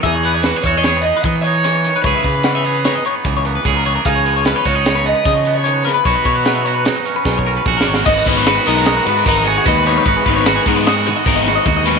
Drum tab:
CC |------------------------------|------------------------------|------------------------------|------------------------------|
RD |------------------------------|------------------------------|------------------------------|------------------------------|
HH |x--x--x--x--x--x--x--x--x--x--|x--x--x--x--x--x--x--x--x--x--|x--x--x--x--x--x--x--x--x--x--|x--x--x--x--x--x--------------|
SD |------o-----o-----------o-----|------o-----o-----------------|------o-----o-----o--------o--|------o-----o-----o-------o-o-|
BD |o--------o--------o-----------|o--o--------------o-----o-----|o--------o--------o-----------|o--o--------------o-o---o-----|

CC |x-----------------------------|------------------------------|
RD |---x--x--x--x--x--x--x--x--x--|x--x--x--x--x--x--x--x--x--x--|
HH |------------------------------|------------------------------|
SD |------o--o--o-----------------|------o-----o--o-----o-----o--|
BD |o--o--------------o-----o-----|o--o-----o--------o-----o-----|